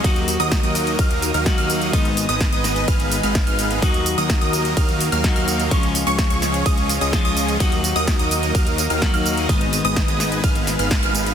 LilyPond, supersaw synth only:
\new Staff \with { instrumentName = "Supersaw synth" } { \time 4/4 \key ees \minor \tempo 4 = 127 <ges bes ees' bes' ees''>16 r8 <ges bes ees' bes' ees''>8 <ges bes ees' bes' ees''>8. <ges bes ees' bes' f''>8 r16 <ges bes ees' bes' f''>8 <ges bes ees' bes' f''>8. | <aes ces' ees' ces''>16 r8 <aes ces' ees' ces'' ees''>8 <aes ces' ees' ces'' ees''>8. <aes ces' ces'' f''>8 r16 <aes ces' ees' ces'' f''>8 <aes ces' ees' ces'' f''>8. | <ges ees' ees''>16 r8 <ges bes ees' bes' ees''>8 <ges bes ees' bes' ees''>8. <ges bes ees' bes' f''>8 r16 <ges bes ees' bes' f''>8 <ges bes ees' bes' f''>8. | <f aes des' aes' des''>16 r8 <f aes des' aes' des''>8 <f aes des' aes' des''>8. <f aes des' aes'>8 r16 <f aes des' aes' ees''>8 <f aes des' aes' ees''>8. |
<ges bes ees' bes' ees''>16 r8 <ges bes ees' bes' ees''>8 <ges bes ees' bes' ees''>8. <ges bes ees' bes' f''>8 r16 <ges bes ees' bes' f''>8 <ges bes ees' bes' f''>8. | <aes ces' ees' ces'' ees''>16 r8 <aes ces' ees' ces'' ees''>8 <aes ces' ees' ces'' ees''>8. <aes ces' ees' ces'' f''>8 r16 <aes ces' ees' ces'' f''>8 <aes ces' ees' ces'' f''>8. | }